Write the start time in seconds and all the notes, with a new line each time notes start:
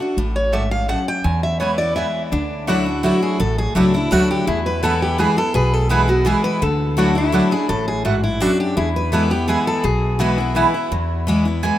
0.00 D4 F#4
0.17 A1 A2
0.36 C#5
0.52 G#2 A3 F#4 D5 E5 A5
0.71 F5
0.88 F#2 A3 F#4 D5 F#5 A5
1.08 G5
1.24 E2 G#5
1.43 E5
1.60 E3 G#3 B3 E4 B4 C#5 G#5
1.78 B3 E4 D5
1.96 E3 G#3 B3 E4 B4 E5 G#5
2.32 D2 D3 D4
2.67 F#3 A3 D4 E4 F#4 D5 F#5
2.86 D4 E4
3.03 F#3 A3 D4 E4 F#4 D5 F#5
3.23 G#4
3.40 A1 A2 A4
3.58 G#4
3.75 C#2 F#3 A3 D4 E4 F#4 D5 F#5
3.94 D4 E4
4.11 D2 F#3 A3 D4 E4 F#4 D5 F#5
4.31 G4
4.47 E2 E4 G#4
4.66 B4
4.83 E3 G#3 B3 E4 A4 B4 G#5
5.02 G4
5.18 E3 G#3 B3 E4 G#4 B4 G#5
5.37 B3 E4 A4
5.54 B1 B2 G#4 B4
5.73 A4
5.89 E3 G#3 B3 E4 G#4 B4 G#5
6.08 B3 E4 F#4
6.25 E3 G#3 B3 E4 G#4 B4 G#5
6.44 B4
6.62 D2 D3 A4
6.97 F#3 A3 D4 E4 F#4 D5 F#5
7.15 D4 E4
7.32 F#3 A3 D4 E4 F#4 D5 F#5
7.51 D4 E4 G#4
7.69 A1 A2 A4
7.88 G#4
8.05 G#2 A3 E4 F#4 D5 F#5
8.24 E4
8.40 F#2 A3 D4 E4 F#4 D5 F#5
8.60 G4
8.77 E2 E4 G#4
8.96 B4
9.12 E3 G#3 B3 E4 A4 B4 G#5
9.30 B3 E4 G4
9.48 E3 G#3 B3 E4 G#4 B4 G#5
9.67 A4
9.84 B1 B2 G#4
10.19 E3 G#3 B3 E4 F#4 B4 G#5
10.38 B3 E4
10.55 E3 G#3 B3 E4 B4 G#5
10.74 B3 E4
10.92 E2
11.27 E3 G#3 B3 E4
11.45 B3 E4
11.63 E3 G#3 B3 E4 G#5